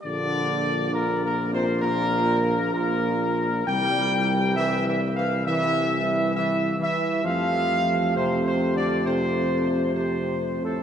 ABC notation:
X:1
M:4/4
L:1/16
Q:1/4=67
K:Cmix
V:1 name="Trumpet section"
d4 (3B2 B2 c2 B4 B4 | g4 (3e2 e2 f2 e4 e2 e2 | f4 (3c2 c2 d2 c4 c3 A |]
V:2 name="French horn section"
[B,F]16 | [E,G,]16 | [A,G]16 |]
V:3 name="Trombone section" clef=bass
D,4 (3B,,2 B,,2 C,2 B,,4 B,,4 | G,4 (3E,2 E,2 E,2 E,4 E,2 E,2 | F,4 (3C,2 C,2 D,2 C,4 C,3 A,, |]
V:4 name="Tuba" clef=bass
B,,,16 | C,,12- C,,2 z2 | F,,16 |]